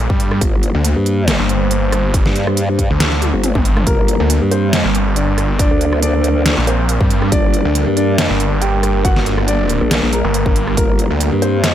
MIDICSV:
0, 0, Header, 1, 6, 480
1, 0, Start_track
1, 0, Key_signature, -2, "minor"
1, 0, Tempo, 431655
1, 460, Time_signature, 4, 2, 24, 8
1, 13058, End_track
2, 0, Start_track
2, 0, Title_t, "Grand piano"
2, 0, Program_c, 0, 0
2, 4300, Note_on_c, 0, 58, 79
2, 4300, Note_on_c, 0, 70, 98
2, 4932, Note_off_c, 0, 58, 0
2, 4932, Note_off_c, 0, 70, 0
2, 5020, Note_on_c, 0, 60, 77
2, 5020, Note_on_c, 0, 72, 91
2, 5652, Note_off_c, 0, 60, 0
2, 5652, Note_off_c, 0, 72, 0
2, 5740, Note_on_c, 0, 62, 76
2, 5741, Note_on_c, 0, 74, 84
2, 6131, Note_off_c, 0, 62, 0
2, 6131, Note_off_c, 0, 74, 0
2, 6220, Note_on_c, 0, 62, 77
2, 6221, Note_on_c, 0, 74, 90
2, 6611, Note_off_c, 0, 62, 0
2, 6611, Note_off_c, 0, 74, 0
2, 6700, Note_on_c, 0, 62, 81
2, 6700, Note_on_c, 0, 74, 96
2, 7332, Note_off_c, 0, 62, 0
2, 7332, Note_off_c, 0, 74, 0
2, 7421, Note_on_c, 0, 60, 76
2, 7421, Note_on_c, 0, 72, 94
2, 8052, Note_off_c, 0, 60, 0
2, 8052, Note_off_c, 0, 72, 0
2, 8140, Note_on_c, 0, 62, 74
2, 8140, Note_on_c, 0, 74, 106
2, 8772, Note_off_c, 0, 62, 0
2, 8772, Note_off_c, 0, 74, 0
2, 8859, Note_on_c, 0, 62, 78
2, 8860, Note_on_c, 0, 74, 94
2, 9492, Note_off_c, 0, 62, 0
2, 9492, Note_off_c, 0, 74, 0
2, 9580, Note_on_c, 0, 67, 78
2, 9580, Note_on_c, 0, 79, 90
2, 9971, Note_off_c, 0, 67, 0
2, 9971, Note_off_c, 0, 79, 0
2, 10060, Note_on_c, 0, 66, 77
2, 10060, Note_on_c, 0, 78, 91
2, 10451, Note_off_c, 0, 66, 0
2, 10451, Note_off_c, 0, 78, 0
2, 10540, Note_on_c, 0, 62, 76
2, 10540, Note_on_c, 0, 74, 96
2, 11172, Note_off_c, 0, 62, 0
2, 11172, Note_off_c, 0, 74, 0
2, 11260, Note_on_c, 0, 58, 80
2, 11260, Note_on_c, 0, 70, 98
2, 11892, Note_off_c, 0, 58, 0
2, 11892, Note_off_c, 0, 70, 0
2, 11979, Note_on_c, 0, 58, 76
2, 11980, Note_on_c, 0, 70, 103
2, 12612, Note_off_c, 0, 58, 0
2, 12612, Note_off_c, 0, 70, 0
2, 12699, Note_on_c, 0, 72, 95
2, 12700, Note_on_c, 0, 60, 74
2, 13058, Note_off_c, 0, 60, 0
2, 13058, Note_off_c, 0, 72, 0
2, 13058, End_track
3, 0, Start_track
3, 0, Title_t, "Ambient pad"
3, 0, Program_c, 1, 92
3, 0, Note_on_c, 1, 55, 79
3, 0, Note_on_c, 1, 58, 74
3, 0, Note_on_c, 1, 69, 90
3, 447, Note_off_c, 1, 69, 0
3, 460, Note_on_c, 1, 72, 89
3, 4287, Note_off_c, 1, 72, 0
3, 4300, Note_on_c, 1, 70, 91
3, 11961, Note_off_c, 1, 70, 0
3, 11980, Note_on_c, 1, 67, 84
3, 13058, Note_off_c, 1, 55, 0
3, 13058, Note_off_c, 1, 58, 0
3, 13058, Note_off_c, 1, 67, 0
3, 13058, End_track
4, 0, Start_track
4, 0, Title_t, "Detuned saw bass"
4, 0, Program_c, 2, 39
4, 110, Note_on_c, 2, 43, 105
4, 442, Note_off_c, 2, 43, 0
4, 830, Note_on_c, 2, 38, 95
4, 1049, Note_off_c, 2, 38, 0
4, 1550, Note_on_c, 2, 31, 100
4, 2489, Note_off_c, 2, 31, 0
4, 3229, Note_on_c, 2, 38, 99
4, 3689, Note_off_c, 2, 38, 0
4, 3950, Note_on_c, 2, 31, 106
4, 4282, Note_off_c, 2, 31, 0
4, 4670, Note_on_c, 2, 38, 103
4, 4889, Note_off_c, 2, 38, 0
4, 5390, Note_on_c, 2, 31, 95
4, 6329, Note_off_c, 2, 31, 0
4, 7310, Note_on_c, 2, 34, 97
4, 7769, Note_off_c, 2, 34, 0
4, 7790, Note_on_c, 2, 43, 103
4, 8123, Note_off_c, 2, 43, 0
4, 8510, Note_on_c, 2, 38, 97
4, 8729, Note_off_c, 2, 38, 0
4, 9230, Note_on_c, 2, 31, 101
4, 10169, Note_off_c, 2, 31, 0
4, 10190, Note_on_c, 2, 31, 98
4, 10889, Note_off_c, 2, 31, 0
4, 11390, Note_on_c, 2, 31, 98
4, 11609, Note_off_c, 2, 31, 0
4, 11630, Note_on_c, 2, 31, 108
4, 11962, Note_off_c, 2, 31, 0
4, 12350, Note_on_c, 2, 38, 95
4, 12569, Note_off_c, 2, 38, 0
4, 13058, End_track
5, 0, Start_track
5, 0, Title_t, "Wobble bass"
5, 0, Program_c, 3, 39
5, 460, Note_on_c, 3, 31, 95
5, 809, Note_off_c, 3, 31, 0
5, 1070, Note_on_c, 3, 43, 99
5, 1529, Note_off_c, 3, 43, 0
5, 2510, Note_on_c, 3, 43, 94
5, 3209, Note_off_c, 3, 43, 0
5, 3710, Note_on_c, 3, 31, 100
5, 3929, Note_off_c, 3, 31, 0
5, 4300, Note_on_c, 3, 31, 96
5, 4649, Note_off_c, 3, 31, 0
5, 4910, Note_on_c, 3, 43, 98
5, 5370, Note_off_c, 3, 43, 0
5, 6350, Note_on_c, 3, 38, 100
5, 7289, Note_off_c, 3, 38, 0
5, 8140, Note_on_c, 3, 31, 94
5, 8489, Note_off_c, 3, 31, 0
5, 8751, Note_on_c, 3, 43, 93
5, 9209, Note_off_c, 3, 43, 0
5, 10910, Note_on_c, 3, 34, 103
5, 11129, Note_off_c, 3, 34, 0
5, 11150, Note_on_c, 3, 34, 100
5, 11369, Note_off_c, 3, 34, 0
5, 11980, Note_on_c, 3, 31, 91
5, 12329, Note_off_c, 3, 31, 0
5, 12590, Note_on_c, 3, 43, 98
5, 13049, Note_off_c, 3, 43, 0
5, 13058, End_track
6, 0, Start_track
6, 0, Title_t, "Drums"
6, 110, Note_on_c, 9, 36, 105
6, 221, Note_off_c, 9, 36, 0
6, 221, Note_on_c, 9, 42, 50
6, 332, Note_off_c, 9, 42, 0
6, 350, Note_on_c, 9, 37, 58
6, 460, Note_on_c, 9, 36, 113
6, 460, Note_on_c, 9, 42, 78
6, 461, Note_off_c, 9, 37, 0
6, 571, Note_off_c, 9, 36, 0
6, 571, Note_off_c, 9, 42, 0
6, 700, Note_on_c, 9, 42, 54
6, 811, Note_off_c, 9, 42, 0
6, 940, Note_on_c, 9, 42, 87
6, 1051, Note_off_c, 9, 42, 0
6, 1180, Note_on_c, 9, 42, 54
6, 1291, Note_off_c, 9, 42, 0
6, 1420, Note_on_c, 9, 38, 115
6, 1420, Note_on_c, 9, 42, 78
6, 1531, Note_off_c, 9, 38, 0
6, 1531, Note_off_c, 9, 42, 0
6, 1660, Note_on_c, 9, 42, 52
6, 1771, Note_off_c, 9, 42, 0
6, 1900, Note_on_c, 9, 42, 77
6, 2011, Note_off_c, 9, 42, 0
6, 2140, Note_on_c, 9, 37, 56
6, 2140, Note_on_c, 9, 42, 52
6, 2251, Note_off_c, 9, 37, 0
6, 2251, Note_off_c, 9, 42, 0
6, 2380, Note_on_c, 9, 36, 122
6, 2380, Note_on_c, 9, 42, 82
6, 2491, Note_off_c, 9, 36, 0
6, 2491, Note_off_c, 9, 42, 0
6, 2510, Note_on_c, 9, 38, 35
6, 2620, Note_on_c, 9, 42, 59
6, 2621, Note_off_c, 9, 38, 0
6, 2731, Note_off_c, 9, 42, 0
6, 2749, Note_on_c, 9, 37, 59
6, 2860, Note_on_c, 9, 42, 86
6, 2861, Note_off_c, 9, 37, 0
6, 2971, Note_off_c, 9, 42, 0
6, 3100, Note_on_c, 9, 36, 60
6, 3100, Note_on_c, 9, 42, 56
6, 3211, Note_off_c, 9, 36, 0
6, 3211, Note_off_c, 9, 42, 0
6, 3339, Note_on_c, 9, 38, 116
6, 3339, Note_on_c, 9, 42, 82
6, 3451, Note_off_c, 9, 38, 0
6, 3451, Note_off_c, 9, 42, 0
6, 3470, Note_on_c, 9, 38, 37
6, 3580, Note_on_c, 9, 42, 53
6, 3580, Note_on_c, 9, 48, 63
6, 3581, Note_off_c, 9, 38, 0
6, 3691, Note_off_c, 9, 42, 0
6, 3691, Note_off_c, 9, 48, 0
6, 3820, Note_on_c, 9, 42, 82
6, 3820, Note_on_c, 9, 47, 78
6, 3931, Note_off_c, 9, 42, 0
6, 3931, Note_off_c, 9, 47, 0
6, 3950, Note_on_c, 9, 36, 107
6, 3950, Note_on_c, 9, 47, 73
6, 4060, Note_on_c, 9, 42, 54
6, 4061, Note_off_c, 9, 36, 0
6, 4062, Note_off_c, 9, 47, 0
6, 4171, Note_off_c, 9, 42, 0
6, 4190, Note_on_c, 9, 37, 59
6, 4190, Note_on_c, 9, 45, 90
6, 4300, Note_on_c, 9, 36, 120
6, 4300, Note_on_c, 9, 42, 85
6, 4301, Note_off_c, 9, 37, 0
6, 4301, Note_off_c, 9, 45, 0
6, 4411, Note_off_c, 9, 36, 0
6, 4411, Note_off_c, 9, 42, 0
6, 4541, Note_on_c, 9, 42, 58
6, 4652, Note_off_c, 9, 42, 0
6, 4780, Note_on_c, 9, 42, 87
6, 4891, Note_off_c, 9, 42, 0
6, 5020, Note_on_c, 9, 42, 57
6, 5131, Note_off_c, 9, 42, 0
6, 5260, Note_on_c, 9, 38, 121
6, 5260, Note_on_c, 9, 42, 83
6, 5372, Note_off_c, 9, 38, 0
6, 5372, Note_off_c, 9, 42, 0
6, 5501, Note_on_c, 9, 42, 59
6, 5612, Note_off_c, 9, 42, 0
6, 5740, Note_on_c, 9, 42, 84
6, 5851, Note_off_c, 9, 42, 0
6, 5980, Note_on_c, 9, 37, 49
6, 5980, Note_on_c, 9, 42, 55
6, 6091, Note_off_c, 9, 37, 0
6, 6091, Note_off_c, 9, 42, 0
6, 6220, Note_on_c, 9, 36, 125
6, 6221, Note_on_c, 9, 42, 87
6, 6331, Note_off_c, 9, 36, 0
6, 6332, Note_off_c, 9, 42, 0
6, 6460, Note_on_c, 9, 42, 57
6, 6571, Note_off_c, 9, 42, 0
6, 6590, Note_on_c, 9, 37, 58
6, 6700, Note_on_c, 9, 42, 94
6, 6701, Note_off_c, 9, 37, 0
6, 6811, Note_off_c, 9, 42, 0
6, 6940, Note_on_c, 9, 42, 57
6, 7051, Note_off_c, 9, 42, 0
6, 7180, Note_on_c, 9, 38, 123
6, 7180, Note_on_c, 9, 42, 87
6, 7291, Note_off_c, 9, 38, 0
6, 7291, Note_off_c, 9, 42, 0
6, 7420, Note_on_c, 9, 42, 55
6, 7532, Note_off_c, 9, 42, 0
6, 7660, Note_on_c, 9, 42, 84
6, 7771, Note_off_c, 9, 42, 0
6, 7790, Note_on_c, 9, 36, 113
6, 7900, Note_on_c, 9, 42, 55
6, 7901, Note_off_c, 9, 36, 0
6, 8011, Note_off_c, 9, 42, 0
6, 8030, Note_on_c, 9, 37, 52
6, 8140, Note_on_c, 9, 36, 127
6, 8140, Note_on_c, 9, 42, 83
6, 8141, Note_off_c, 9, 37, 0
6, 8251, Note_off_c, 9, 36, 0
6, 8251, Note_off_c, 9, 42, 0
6, 8380, Note_on_c, 9, 42, 56
6, 8492, Note_off_c, 9, 42, 0
6, 8620, Note_on_c, 9, 42, 87
6, 8731, Note_off_c, 9, 42, 0
6, 8860, Note_on_c, 9, 42, 57
6, 8972, Note_off_c, 9, 42, 0
6, 9101, Note_on_c, 9, 38, 127
6, 9101, Note_on_c, 9, 42, 81
6, 9212, Note_off_c, 9, 38, 0
6, 9212, Note_off_c, 9, 42, 0
6, 9341, Note_on_c, 9, 42, 53
6, 9452, Note_off_c, 9, 42, 0
6, 9581, Note_on_c, 9, 42, 81
6, 9692, Note_off_c, 9, 42, 0
6, 9821, Note_on_c, 9, 37, 51
6, 9821, Note_on_c, 9, 42, 54
6, 9932, Note_off_c, 9, 37, 0
6, 9932, Note_off_c, 9, 42, 0
6, 10060, Note_on_c, 9, 36, 127
6, 10060, Note_on_c, 9, 42, 77
6, 10171, Note_off_c, 9, 36, 0
6, 10171, Note_off_c, 9, 42, 0
6, 10191, Note_on_c, 9, 38, 40
6, 10300, Note_on_c, 9, 42, 54
6, 10302, Note_off_c, 9, 38, 0
6, 10412, Note_off_c, 9, 42, 0
6, 10430, Note_on_c, 9, 37, 56
6, 10540, Note_on_c, 9, 42, 84
6, 10542, Note_off_c, 9, 37, 0
6, 10651, Note_off_c, 9, 42, 0
6, 10780, Note_on_c, 9, 42, 55
6, 10891, Note_off_c, 9, 42, 0
6, 11020, Note_on_c, 9, 38, 120
6, 11020, Note_on_c, 9, 42, 84
6, 11131, Note_off_c, 9, 38, 0
6, 11131, Note_off_c, 9, 42, 0
6, 11260, Note_on_c, 9, 42, 50
6, 11372, Note_off_c, 9, 42, 0
6, 11500, Note_on_c, 9, 42, 80
6, 11611, Note_off_c, 9, 42, 0
6, 11630, Note_on_c, 9, 36, 113
6, 11740, Note_on_c, 9, 42, 50
6, 11741, Note_off_c, 9, 36, 0
6, 11851, Note_off_c, 9, 42, 0
6, 11870, Note_on_c, 9, 37, 53
6, 11980, Note_on_c, 9, 36, 117
6, 11980, Note_on_c, 9, 42, 80
6, 11982, Note_off_c, 9, 37, 0
6, 12091, Note_off_c, 9, 36, 0
6, 12091, Note_off_c, 9, 42, 0
6, 12220, Note_on_c, 9, 42, 52
6, 12331, Note_off_c, 9, 42, 0
6, 12460, Note_on_c, 9, 42, 80
6, 12571, Note_off_c, 9, 42, 0
6, 12700, Note_on_c, 9, 42, 55
6, 12811, Note_off_c, 9, 42, 0
6, 12940, Note_on_c, 9, 38, 121
6, 12940, Note_on_c, 9, 42, 80
6, 13052, Note_off_c, 9, 38, 0
6, 13052, Note_off_c, 9, 42, 0
6, 13058, End_track
0, 0, End_of_file